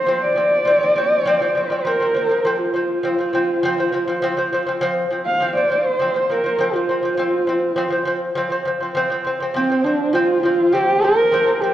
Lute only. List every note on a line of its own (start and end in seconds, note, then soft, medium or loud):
0.06 0.31 F3 medium
0.06 0.32 C4 medium
0.36 0.60 F3 medium
0.36 0.61 C4 medium
0.65 0.78 F3 medium
0.65 0.79 C4 medium
0.81 0.93 F3 medium
0.81 0.94 C4 medium
0.96 1.20 F3 medium
0.96 1.21 C4 medium
1.26 1.38 F3 medium
1.26 1.39 C4 loud
1.40 1.53 F3 medium
1.40 1.53 C4 medium
1.55 1.67 F3 medium
1.55 1.68 C4 medium
1.70 1.82 F3 medium
1.70 1.83 C4 medium
1.85 1.97 F3 medium
1.85 1.98 C4 medium
2.00 2.12 F3 medium
2.00 2.13 C4 medium
2.14 2.27 F3 medium
2.14 2.28 C4 medium
2.29 2.41 F3 medium
2.29 2.42 C4 medium
2.45 2.68 F3 medium
2.45 2.69 C4 medium
2.74 2.98 F3 medium
2.74 2.99 C4 medium
3.03 3.15 F3 medium
3.03 3.16 C4 medium
3.19 3.30 F3 medium
3.19 3.31 C4 medium
3.33 3.57 F3 medium
3.33 3.58 C4 medium
3.63 3.75 F3 loud
3.63 3.76 C4 loud
3.78 3.90 F3 medium
3.78 3.91 C4 medium
3.92 4.04 F3 medium
3.92 4.05 C4 medium
4.08 4.19 F3 medium
4.08 4.20 C4 medium
4.22 4.34 F3 loud
4.22 4.35 C4 loud
4.37 4.49 F3 medium
4.37 4.50 C4 medium
4.53 4.64 F3 medium
4.53 4.65 C4 medium
4.66 4.78 F3 medium
4.66 4.79 C4 medium
4.81 5.05 F3 loud
4.81 5.06 C4 loud
5.11 5.34 F3 medium
5.11 5.35 C4 medium
5.40 5.52 F3 medium
5.40 5.53 C4 medium
5.55 5.67 F3 medium
5.55 5.68 C4 medium
5.70 5.94 F3 medium
5.70 5.95 C4 medium
5.99 6.11 F3 medium
5.99 6.12 C4 medium
6.14 6.26 F3 medium
6.14 6.27 C4 medium
6.29 6.41 F3 medium
6.29 6.42 C4 medium
6.44 6.56 F3 medium
6.44 6.57 C4 medium
6.58 6.71 F3 medium
6.58 6.72 C4 medium
6.73 6.85 F3 medium
6.73 6.87 C4 medium
6.89 7.01 F3 medium
6.89 7.02 C4 medium
7.03 7.15 F3 medium
7.03 7.16 C4 medium
7.18 7.42 F3 medium
7.18 7.42 C4 medium
7.47 7.71 F3 medium
7.47 7.72 C4 medium
7.76 7.88 F3 loud
7.76 7.89 C4 loud
7.90 8.03 F3 medium
7.90 8.04 C4 medium
8.05 8.30 F3 medium
8.05 8.31 C4 medium
8.35 8.48 F3 medium
8.35 8.49 C4 loud
8.50 8.63 F3 medium
8.50 8.63 C4 medium
8.65 8.78 F3 medium
8.65 8.79 C4 medium
8.80 8.93 F3 medium
8.80 8.94 C4 medium
8.95 9.07 F3 medium
8.95 9.08 C4 loud
9.10 9.22 F3 medium
9.10 9.23 C4 medium
9.24 9.37 F3 medium
9.24 9.38 C4 medium
9.40 9.52 F3 medium
9.40 9.53 C4 medium
9.54 9.66 F3 medium
9.54 9.67 C4 loud
9.70 9.81 F3 medium
9.70 9.82 C4 medium
9.84 10.08 F3 medium
9.84 10.09 C4 medium
10.13 10.37 F3 medium
10.13 10.38 C4 loud
10.43 10.67 F3 medium
10.43 10.68 C4 medium
10.72 10.96 F3 medium
10.72 10.97 C4 medium
11.02 11.26 F3 medium
11.02 11.27 C4 medium
11.32 11.44 F3 medium
11.32 11.45 C4 loud
11.46 11.58 F3 medium
11.46 11.59 C4 medium
11.62 11.74 F3 medium
11.62 11.74 C4 medium